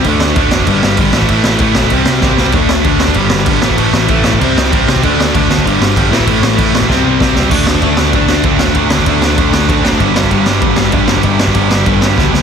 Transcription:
<<
  \new Staff \with { instrumentName = "Distorted electric guitar" } { \clef bass \time 4/4 \key g \dorian \tempo 4 = 193 <d a d'>4 <d a d'>8 <d a d'>8 <g, d g>4 <g, d g>8 <a, e a>8 | <a, e a>4 <a, e a>8 <a, e a>8 <c g c'>4 <c g c'>8 <c g c'>8 | <d a d'>4 <d a d'>8 <d a d'>8 <g, d g>4 <g, d g>8 <a, e a>8 | <a, e a>4 <a, e a>8 <a, e a>8 <c g c'>4 <c g c'>8 <c g c'>8 |
<d a d'>4 <d a d'>8 <d a d'>8 <g, d g>4 <g, d g>8 <a, e a>8 | <a, e a>4 <a, e a>8 <a, e a>8 <c g c'>4 <c g c'>8 <c g c'>8 | <d a d'>8 <d a d'>8 <d a d'>8 <d a d'>8 <d a d'>8 <d a d'>8 <d a d'>8 <d a d'>8 | <d a d'>8 <d a d'>8 <d a d'>8 <d a d'>8 <d a d'>8 <d a d'>8 <d a d'>8 <d a d'>8 |
<g, d g>8 <g, d g>8 <g, d g>8 <g, d g>8 <g, d g>8 <g, d g>8 <g, d g>8 <g, d g>8 | <g, d g>8 <g, d g>8 <g, d g>8 <g, d g>8 <g, d g>8 <g, d g>8 <g, d g>8 <g, d g>8 | }
  \new Staff \with { instrumentName = "Distorted electric guitar" } { \clef bass \time 4/4 \key g \dorian <d a d'>4 <d a d'>8 <d a d'>8 <g, d g>4 <g, d g>8 <a, e a>8 | <a, e a>4 <a, e a>8 <a, e a>8 <c g c'>4 <c g c'>8 <c g c'>8 | <d a d'>4 <d a d'>8 <d a d'>8 <g, d g>4 <g, d g>8 <a, e a>8 | <a, e a>4 <a, e a>8 <a, e a>8 <c g c'>4 <c g c'>8 <c g c'>8 |
<d a d'>4 <d a d'>8 <d a d'>8 <g, d g>4 <g, d g>8 <a, e a>8 | <a, e a>4 <a, e a>8 <a, e a>8 <c g c'>4 <c g c'>8 <c g c'>8 | <d a d'>8 <d a d'>8 <d a d'>8 <d a d'>8 <d a d'>8 <d a d'>8 <d a d'>8 <d a d'>8 | <d a d'>8 <d a d'>8 <d a d'>8 <d a d'>8 <d a d'>8 <d a d'>8 <d a d'>8 <d a d'>8 |
<g, d g>8 <g, d g>8 <g, d g>8 <g, d g>8 <g, d g>8 <g, d g>8 <g, d g>8 <g, d g>8 | <g, d g>8 <g, d g>8 <g, d g>8 <g, d g>8 <g, d g>8 <g, d g>8 <g, d g>8 <g, d g>8 | }
  \new Staff \with { instrumentName = "Distorted electric guitar" } { \clef bass \time 4/4 \key g \dorian <d a d'>2 <g, d g>4. <a, e a>8~ | <a, e a>2 <c g c'>2 | <d a d'>2 <g, d g>4. <a, e a>8~ | <a, e a>2 <c g c'>2 |
<d a d'>2 <g, d g>4. <a, e a>8~ | <a, e a>2 <c g c'>2 | <d a d'>4. <d a d'>4. <d a d'>4 | <d a d'>4. <d a d'>4. <d a d'>4 |
<g, d g>4. <g, d g>4. <g, d g>4 | <g, d g>4. <g, d g>4. <g, d g>4 | }
  \new Staff \with { instrumentName = "Picked electric bass" } { \clef bass \time 4/4 \key g \dorian d,4 d,8 f,,8 g,,8 g,,8 gis,,8 a,,8 | a,,8 a,,8 a,,8 b,,8 c,8 c,8 c,8 c,8 | d,4 d,8 d,8 g,,8 g,,8 g,,8 a,,8 | a,,8 a,,8 a,,8 a,,8 c,8 c,8 c,8 c,8 |
d,4 d,8 d,8 g,,8 g,,8 g,,8 a,,8 | a,,8 a,,8 a,,8 a,,8 c,8 c,8 c,8 cis,8 | d,4 d,8 d,8 d,8 d,8 d,4 | d,4 d,8 d,8 d,8 d,8 d,4 |
g,,4 g,,8 g,,8 g,,8 g,,8 g,,4 | g,,4 g,,8 g,,8 g,,8 g,,8 cis,4 | }
  \new DrumStaff \with { instrumentName = "Drums" } \drummode { \time 4/4 <cymc bd>8 sn8 <cymc bd>8 sn16 bd16 <cymc bd>8 sn8 <cymc bd>8 sn16 bd16 | <cymc bd>8 sn8 <cymc bd>8 sn16 bd16 <cymc bd>8 sn8 <bd sn>8 sn8 | <cymc bd>8 sn8 <cymc bd>8 sn16 bd16 <cymc bd>8 sn8 <cymc bd>8 sn16 bd16 | <cymc bd>8 sn8 <cymc bd>8 sn16 bd16 <cymc bd>8 sn8 <cymc bd>8 sn16 bd16 |
<cymc bd>8 sn8 <cymc bd>8 sn16 bd16 <cymc bd>8 sn8 <cymc bd>8 sn16 bd16 | <cymc bd>8 sn8 <cymc bd>8 sn16 bd16 <bd sn>4 <bd sn>8 sn8 | <cymc bd>8 sn16 bd16 <bd cymr>8 sn8 <bd cymr>8 sn8 <bd cymr>8 sn16 bd16 | <bd cymr>8 sn16 bd16 <bd cymr>8 sn8 <bd cymr>8 sn8 <bd cymr>8 sn16 bd16 |
<bd cymr>8 sn16 bd16 <bd cymr>8 sn8 <bd cymr>8 sn8 <bd cymr>8 sn16 bd16 | <bd cymr>8 sn16 bd16 <bd cymr>8 sn8 <bd cymr>8 sn8 <bd sn>8 sn8 | }
>>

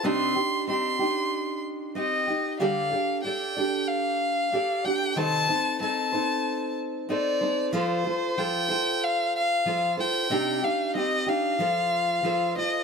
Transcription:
<<
  \new Staff \with { instrumentName = "Violin" } { \time 4/4 \key c \dorian \tempo 4 = 93 c'''4 c'''4. r8 ees''4 | f''4 g''4 f''4. g''8 | a''4 a''4. r8 d''4 | c''4 g''4 f''8 f''4 g''8~ |
g''8 f''8 ees''8 f''2 ees''8 | }
  \new Staff \with { instrumentName = "Steel-string acoustic guitar" } { \time 4/4 \key c \dorian <c c' d' ees' g'>8 <d' ees' g'>8 <c' d' ees' g'>8 <d' ees' g'>4. <c' ees' g'>8 <ees' g'>8 | <d g d' g' a' d''>8 <d' g' a' d''>8 <d' g' a' d''>8 <d' g' a' d''>4. <d' g' a' d''>8 <d' g' a' d''>8 | <c ees c' ees' a' c''>8 <c' ees' a' c''>8 <c' ees' a' c''>8 <c' ees' a' c''>4. <c' ees' a' c''>8 <c' ees' a' c''>8 | <f f' a' c''>8 <f' a' c''>8 <f f' a' c''>8 <f' a' c''>4. <f f' a' c''>8 <f' a' c''>8 |
<c c' d' ees' g'>8 <d' ees' g'>8 <c' ees' g'>8 <d' ees' g'>8 <f f' a' c''>4 <f f' a' c''>8 <f' a' c''>8 | }
>>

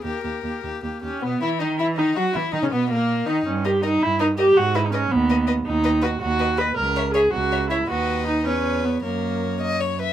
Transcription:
<<
  \new Staff \with { instrumentName = "Violin" } { \time 6/8 \key gis \minor \tempo 4. = 108 ais'4. r4. | b8 e'8 dis'8 e'8 dis'8 fis'8 | e'8 dis'16 cis'16 b8 ais4 dis'8 | r8 dis''8 dis''8 r8 dis''8 dis''8 |
r8 dis''8 dis''8 r8 dis''8 dis''8 | \key b \major r8 dis''8 dis''8 r8 dis''8 dis''8 | r8 e''8 e''8 r8 e''8 e''8 | dis''4. cis''4. |
cis''2~ cis''8 e''8 | }
  \new Staff \with { instrumentName = "Violin" } { \time 6/8 \key gis \minor g'8 g'8 g'8 g'8 g'8 g'8 | b8 e'8 dis'8 e'8 dis'8 fis'8 | e'8 dis'16 cis'16 b8 ais4 dis'8 | r8 ais'8 ais'8 r8 ais'8 ais'8 |
r8 b'8 b'8 r8 b'8 b'8 | \key b \major r8 b'8 b'8 r8 b'8 b'8 | r8 cis''8 cis''8 r8 cis''8 cis''8 | b'4. b'4. |
ais'4. dis''8 cis''8 b'8 | }
  \new Staff \with { instrumentName = "Viola" } { \time 6/8 \key gis \minor ais8 ais8 ais8 ais8 ais8 cis'8 | b8 e'8 dis'8 e'8 dis'8 fis'8 | e'8 dis'16 cis'16 b8 ais4 dis'8 | cis'8 g'8 dis'8 e'8 dis'8 g'8 |
fis'8 e'16 dis'16 cis'8 b4 r8 | \key b \major dis'4 fis'8 fis'4 b'8 | ais'4 gis'8 fis'4 e'8 | fis'4 dis'8 cis'4 b8 |
ais4. r4. | }
  \new Staff \with { instrumentName = "Cello" } { \clef bass \time 6/8 \key gis \minor dis,8 dis,8 dis,8 dis,8 dis,8 dis,8 | b,8 e8 dis8 e8 dis8 fis8 | e8 dis16 cis16 b,8 ais,4 dis8 | g,4. g,4. |
gis,4. dis,4. | \key b \major dis,4. dis,4. | cis,4. cis,4. | dis,4. e,4. |
fis,2~ fis,8 r8 | }
>>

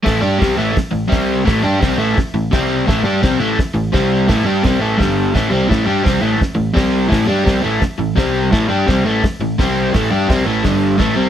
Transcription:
<<
  \new Staff \with { instrumentName = "Overdriven electric guitar" } { \clef bass \time 4/4 \key a \minor \tempo 4 = 170 <a, e a>8 <g d' g'>8 <c g c'>8 <a, e a>8 r8 <a, e>8 <c g c'>4 | <a, e a>8 <g d' g'>8 <c g c'>8 <a, e a>8 r8 <a, e>8 <c g c'>4 | <a, e a>8 <g d' g'>8 <c g c'>8 <a, e a>8 r8 <a, e>8 <c g c'>4 | <a, e a>8 <g d' g'>8 <c g c'>8 <a, e a>8 <g, d g>4 <a, e a>8 <c g c'>8 |
<a, e a>8 <g d' g'>8 <c g c'>8 <a, e a>8 r8 <a, e>8 <c g c'>4 | <a, e a>8 <g d' g'>8 <c g c'>8 <a, e a>8 r8 <a, e>8 <c g c'>4 | <a, e a>8 <g d' g'>8 <c g c'>8 <a, e a>8 r8 <a, e>8 <c g c'>4 | <a, e a>8 <g d' g'>8 <c g c'>8 <a, e a>8 <g, d g>4 <a, e a>8 <c g c'>8 | }
  \new Staff \with { instrumentName = "Picked electric bass" } { \clef bass \time 4/4 \key a \minor a,,8 g,8 c,8 a,,8 r8 a,,8 c,4 | a,,8 g,8 c,8 a,,8 r8 a,,8 c,4 | a,,8 g,8 c,8 a,,8 r8 a,,8 c,4 | a,,8 g,8 c,8 a,,8 g,,4 a,,8 c,8 |
a,,8 g,8 c,8 a,,8 r8 a,,8 c,4 | a,,8 g,8 c,8 a,,8 r8 a,,8 c,4 | a,,8 g,8 c,8 a,,8 r8 a,,8 c,4 | a,,8 g,8 c,8 a,,8 g,,4 a,,8 c,8 | }
  \new DrumStaff \with { instrumentName = "Drums" } \drummode { \time 4/4 <hho bd sn>4 <hho bd sn>4 <hho bd sn>4 <hho bd sn>4 | <hho bd sn>4 <hho bd sn>4 <hho bd sn>4 <hho bd sn>4 | <hho bd sn>4 <hho bd sn>4 <hho bd sn>4 <hho bd sn>4 | <hho bd sn>4 <hho bd sn>4 <hho bd sn>4 <hho bd sn>4 |
<hho bd sn>4 <hho bd sn>4 <hho bd sn>4 <hho bd sn>4 | <hho bd sn>4 <hho bd sn>4 <hho bd sn>4 <hho bd sn>4 | <hho bd sn>4 <hho bd sn>4 <hho bd sn>4 <hho bd sn>4 | <hho bd sn>4 <hho bd sn>4 <hho bd sn>4 <hho bd sn>4 | }
>>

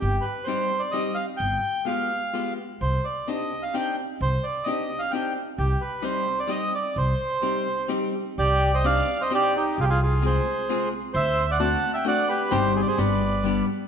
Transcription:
<<
  \new Staff \with { instrumentName = "Bandoneon" } { \time 3/4 \key c \minor \tempo 4 = 130 << { g'8 b'8 c''8. d''16 ees''8 f''8 | g''4 f''4. r8 | c''8 d''8 ees''8. f''16 g''8 r8 | c''8 d''8 ees''8. f''16 g''8 r8 |
g'8 b'8 c''8. d''16 ees''8 d''8 | c''2 r4 | d''8. ees''16 f''8. ees''16 d''8 g'8 | aes'32 g'32 aes'16 aes'8 c''4. r8 |
e''8. fis''16 a''8. g''16 fis''8 b'8 | c''8 c''32 d''32 c''16 d''4. r8 | } \\ { r2. | r2. | r2. | r2. |
r2. | r2. | g'8. c''16 d''8. c''16 g'8 ees'8 | f'16 f'16 f'8 aes'4. r8 |
c''8. d''16 fis''8. e''16 d''8 g'8 | g'8 aes'16 aes'16 b'4. r8 | } >> }
  \new Staff \with { instrumentName = "Hollow-body jazz guitar" } { \time 3/4 \key c \minor r4 <g c' ees' g'>8 r8 <g c' ees' g'>8 r8 | r4 <aes b f' g'>8 r8 <aes b f' g'>8 r8 | r4 <c' d' ees' g'>8 r8 <c' d' ees' g'>8 r8 | r4 <c' d' ees' g'>8 r8 <c' d' ees' g'>8 r8 |
r4 <g c' ees' g'>8 r8 <g c' ees' g'>8 r8 | r4 <g c' ees' g'>8 r8 <g c' ees' g'>8 r8 | r4 <c' d' ees' g'>8 r8 <c' d' ees' g'>8 r8 | r4 <aes c' f' aes'>8 r8 <aes c' f' aes'>8 r8 |
r4 <a c' d' fis'>8 r8 <a c' d' fis'>8 r8 | <g c' ees' g'>4 <g b d' g'>8 r8 <g b d' g'>8 r8 | }
  \new Staff \with { instrumentName = "Upright bass" } { \clef bass \time 3/4 \key c \minor g,,8 r2 r8 | g,,8 r2 r8 | c,8 r2 r8 | c,8 r2 r8 |
c,8 r2 r8 | c,8 r2 r8 | c,2 r4 | c,2 r4 |
d,2 r4 | g,,4 g,,2 | }
>>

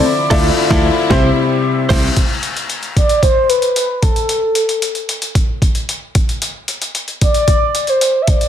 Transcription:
<<
  \new Staff \with { instrumentName = "Soft synth lead" } { \time 4/4 \key c \mixolydian \tempo 4 = 113 d''2~ d''8 r4. | \key d \dorian r4. d''8 c''8 b'4 a'8~ | a'4 r2. | r4. d''4~ d''16 c''8~ c''32 e''32 d''8 | }
  \new Staff \with { instrumentName = "Upright piano" } { \time 4/4 \key c \mixolydian r8 <e' f' a' d''>8 r16 <e' f' a'>8 r16 <c e' g' c'' e''>8 r4. | \key d \dorian r1 | r1 | r1 | }
  \new Staff \with { instrumentName = "Clean electric guitar" } { \time 4/4 \key c \mixolydian r8 <a d' e' a'>8 r16 <d f a d' e' a'>8 r16 <g c' e' c''>8 r4 <g c' e' c''>8 | \key d \dorian r1 | r1 | r1 | }
  \new Staff \with { instrumentName = "String section" } { \clef bass \time 4/4 \key c \mixolydian << { e'1 | \key d \dorian r1 | r1 | r1 | } \\ { <d f>2 <c g>2 | r1 | r1 | r1 | } >> }
  \new Staff \with { instrumentName = "Fingered electric bass" } { \clef bass \time 4/4 \key c \mixolydian r8 d,8 r16 d,8 r16 c,8 r4 c,8 | \key d \dorian r1 | r1 | r1 | }
  \new DrumStaff \with { instrumentName = "Drums" } \drummode { \time 4/4 r8 <cymc bd sn>8 r16 <bd sn>8. <bd sn>4 r8 <cymc bd sn>8 | <hh bd>8 hh16 hh16 hh16 hh16 <hh bd>16 hh16 <hh bd>8 hh16 hh16 hh8 <hh bd>16 hh16 | hh8 hh16 hh16 hh16 hh16 hh16 hh16 <hh bd>8 <hh bd>16 hh16 hh8 <hh bd>16 hh16 | hh8 hh16 hh16 hh16 hh16 <hh bd>16 hh16 <hh bd>8 hh16 hh16 hh8 <hh bd>16 hh16 | }
>>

